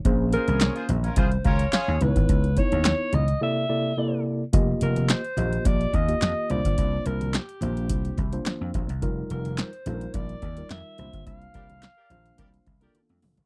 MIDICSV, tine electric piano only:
0, 0, Header, 1, 2, 480
1, 0, Start_track
1, 0, Tempo, 560748
1, 43, Time_signature, 4, 2, 24, 8
1, 11521, End_track
2, 0, Start_track
2, 0, Title_t, "Tine electric piano"
2, 0, Program_c, 0, 4
2, 45, Note_on_c, 0, 58, 88
2, 46, Note_on_c, 0, 61, 82
2, 50, Note_on_c, 0, 68, 82
2, 51, Note_on_c, 0, 72, 107
2, 810, Note_off_c, 0, 58, 0
2, 811, Note_off_c, 0, 61, 0
2, 812, Note_off_c, 0, 68, 0
2, 813, Note_off_c, 0, 72, 0
2, 1719, Note_on_c, 0, 59, 78
2, 1721, Note_on_c, 0, 63, 68
2, 1723, Note_on_c, 0, 64, 66
2, 1725, Note_on_c, 0, 71, 68
2, 1781, Note_on_c, 0, 73, 81
2, 1783, Note_off_c, 0, 71, 0
2, 2111, Note_off_c, 0, 59, 0
2, 2111, Note_off_c, 0, 63, 0
2, 2113, Note_off_c, 0, 64, 0
2, 2142, Note_off_c, 0, 73, 0
2, 2197, Note_on_c, 0, 59, 72
2, 2200, Note_on_c, 0, 63, 63
2, 2201, Note_on_c, 0, 64, 69
2, 2205, Note_on_c, 0, 73, 85
2, 2778, Note_off_c, 0, 59, 0
2, 2780, Note_off_c, 0, 63, 0
2, 2780, Note_off_c, 0, 64, 0
2, 2782, Note_off_c, 0, 73, 0
2, 2920, Note_on_c, 0, 48, 79
2, 2922, Note_on_c, 0, 58, 69
2, 2923, Note_on_c, 0, 64, 76
2, 2925, Note_on_c, 0, 69, 74
2, 2928, Note_on_c, 0, 74, 90
2, 3115, Note_off_c, 0, 48, 0
2, 3116, Note_off_c, 0, 58, 0
2, 3117, Note_off_c, 0, 64, 0
2, 3118, Note_off_c, 0, 69, 0
2, 3119, Note_off_c, 0, 74, 0
2, 3159, Note_on_c, 0, 48, 76
2, 3161, Note_on_c, 0, 58, 66
2, 3162, Note_on_c, 0, 64, 71
2, 3163, Note_on_c, 0, 69, 73
2, 3164, Note_on_c, 0, 74, 88
2, 3355, Note_off_c, 0, 48, 0
2, 3356, Note_off_c, 0, 58, 0
2, 3356, Note_off_c, 0, 64, 0
2, 3357, Note_off_c, 0, 69, 0
2, 3357, Note_off_c, 0, 74, 0
2, 3401, Note_on_c, 0, 48, 78
2, 3402, Note_on_c, 0, 58, 76
2, 3404, Note_on_c, 0, 64, 79
2, 3405, Note_on_c, 0, 69, 71
2, 3408, Note_on_c, 0, 74, 85
2, 3789, Note_off_c, 0, 48, 0
2, 3790, Note_off_c, 0, 58, 0
2, 3791, Note_off_c, 0, 64, 0
2, 3792, Note_off_c, 0, 69, 0
2, 3793, Note_off_c, 0, 74, 0
2, 3877, Note_on_c, 0, 58, 98
2, 3879, Note_on_c, 0, 65, 81
2, 3883, Note_on_c, 0, 67, 83
2, 3885, Note_on_c, 0, 75, 104
2, 4458, Note_off_c, 0, 58, 0
2, 4459, Note_off_c, 0, 65, 0
2, 4461, Note_off_c, 0, 67, 0
2, 4462, Note_off_c, 0, 75, 0
2, 4597, Note_on_c, 0, 58, 73
2, 4602, Note_on_c, 0, 65, 69
2, 4602, Note_on_c, 0, 67, 69
2, 4605, Note_on_c, 0, 75, 76
2, 5077, Note_off_c, 0, 58, 0
2, 5080, Note_off_c, 0, 65, 0
2, 5080, Note_off_c, 0, 67, 0
2, 5081, Note_off_c, 0, 75, 0
2, 5206, Note_on_c, 0, 58, 71
2, 5210, Note_on_c, 0, 65, 60
2, 5210, Note_on_c, 0, 67, 65
2, 5214, Note_on_c, 0, 75, 73
2, 5552, Note_off_c, 0, 58, 0
2, 5557, Note_off_c, 0, 65, 0
2, 5563, Note_off_c, 0, 67, 0
2, 5563, Note_on_c, 0, 58, 72
2, 5565, Note_off_c, 0, 75, 0
2, 5565, Note_on_c, 0, 62, 68
2, 5568, Note_on_c, 0, 65, 74
2, 5568, Note_on_c, 0, 72, 89
2, 6334, Note_off_c, 0, 58, 0
2, 6335, Note_off_c, 0, 62, 0
2, 6336, Note_off_c, 0, 65, 0
2, 6336, Note_off_c, 0, 72, 0
2, 6521, Note_on_c, 0, 58, 73
2, 6521, Note_on_c, 0, 62, 66
2, 6524, Note_on_c, 0, 65, 65
2, 6526, Note_on_c, 0, 72, 78
2, 6999, Note_off_c, 0, 58, 0
2, 6999, Note_off_c, 0, 62, 0
2, 7001, Note_off_c, 0, 65, 0
2, 7002, Note_off_c, 0, 72, 0
2, 7126, Note_on_c, 0, 58, 76
2, 7129, Note_on_c, 0, 62, 77
2, 7130, Note_on_c, 0, 65, 72
2, 7132, Note_on_c, 0, 72, 98
2, 7605, Note_off_c, 0, 58, 0
2, 7606, Note_off_c, 0, 62, 0
2, 7607, Note_off_c, 0, 65, 0
2, 7608, Note_off_c, 0, 72, 0
2, 7721, Note_on_c, 0, 55, 95
2, 7721, Note_on_c, 0, 63, 88
2, 7724, Note_on_c, 0, 65, 86
2, 7726, Note_on_c, 0, 70, 117
2, 8300, Note_off_c, 0, 55, 0
2, 8300, Note_off_c, 0, 63, 0
2, 8301, Note_off_c, 0, 65, 0
2, 8303, Note_off_c, 0, 70, 0
2, 8443, Note_on_c, 0, 55, 76
2, 8445, Note_on_c, 0, 63, 64
2, 8448, Note_on_c, 0, 65, 65
2, 8450, Note_on_c, 0, 69, 69
2, 8505, Note_off_c, 0, 69, 0
2, 8505, Note_on_c, 0, 70, 87
2, 8920, Note_off_c, 0, 55, 0
2, 8921, Note_off_c, 0, 63, 0
2, 8923, Note_off_c, 0, 65, 0
2, 8951, Note_off_c, 0, 70, 0
2, 9049, Note_on_c, 0, 55, 74
2, 9052, Note_on_c, 0, 63, 68
2, 9053, Note_on_c, 0, 65, 66
2, 9057, Note_on_c, 0, 70, 70
2, 9395, Note_off_c, 0, 65, 0
2, 9401, Note_on_c, 0, 58, 73
2, 9402, Note_off_c, 0, 55, 0
2, 9403, Note_on_c, 0, 62, 66
2, 9404, Note_off_c, 0, 63, 0
2, 9405, Note_on_c, 0, 65, 69
2, 9406, Note_off_c, 0, 70, 0
2, 9408, Note_on_c, 0, 72, 84
2, 10173, Note_off_c, 0, 58, 0
2, 10174, Note_off_c, 0, 62, 0
2, 10175, Note_off_c, 0, 65, 0
2, 10176, Note_off_c, 0, 72, 0
2, 10357, Note_on_c, 0, 58, 83
2, 10359, Note_on_c, 0, 62, 85
2, 10361, Note_on_c, 0, 65, 75
2, 10363, Note_on_c, 0, 72, 96
2, 10837, Note_off_c, 0, 58, 0
2, 10838, Note_off_c, 0, 62, 0
2, 10839, Note_off_c, 0, 65, 0
2, 10840, Note_off_c, 0, 72, 0
2, 10966, Note_on_c, 0, 58, 84
2, 10970, Note_on_c, 0, 62, 74
2, 10971, Note_on_c, 0, 65, 81
2, 10972, Note_on_c, 0, 69, 86
2, 11445, Note_off_c, 0, 58, 0
2, 11447, Note_off_c, 0, 62, 0
2, 11447, Note_off_c, 0, 65, 0
2, 11448, Note_off_c, 0, 69, 0
2, 11521, End_track
0, 0, End_of_file